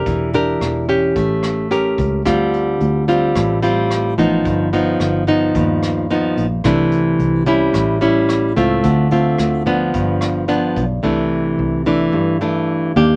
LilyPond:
<<
  \new Staff \with { instrumentName = "Nylon-string guitar" } { \time 4/4 \key c \major \tempo 4 = 109 << { <d' g' bes'>8 <d' g' bes'>4 <des' g'>4. <cis' g' bes'>4 | <g c' f'>4. <g c' f'>4 <g c' f'>4 <f b ees'>8~ | <f b ees'>8 <f b dis'>4 <f b dis'>4. <f b dis'>8 r8 | <e a d'>4. <g des' e'>4 <g cis' e'>4 <a c' f'>8~ |
<a c' f'>8 <a c' f'>4 <f b d'>4. <f b d'>8 r8 | <e a d'>4. <e a d'>4 <e a d'>4 <bes d' g'>8 | } \\ { e2 a2 | d2 a,2 | g,2 g,2 | c2 a,2 |
d2 g,2 | c2 g,2 | } >> }
  \new Staff \with { instrumentName = "Fingered electric bass" } { \clef bass \time 4/4 \key c \major e,,4 e,,4 a,,4. cis,8 | d,4 d,4 a,,4. a,,8 | g,,4 g,,4 dis,4. ais,,8 | c,4 c,4 a,,4. cis,8 |
d,4 d,4 g,,4. b,,8 | c,4 c,4 g,4. ees,8 | }
  \new DrumStaff \with { instrumentName = "Drums" } \drummode { \time 4/4 <hh bd>8 hh8 <hh ss>8 hh8 <hh bd>8 <hh ss>8 hh8 <hh bd>8 | <hh bd ss>8 hh8 hh8 hh8 <hh bd ss>8 hh8 <hh ss>8 hh8 | <hh bd>8 hh8 <hh ss>8 hh8 <hh bd>8 <hh ss>8 hh8 hh8 | <hh bd ss>8 hh8 hh8 hh8 <hh bd ss>8 hh8 <hh ss>8 hh8 |
<hh bd>8 hh8 <hh ss>8 hh8 <hh bd>8 <hh ss>8 hh8 <hh bd>8 | r4 r4 r4 r4 | }
>>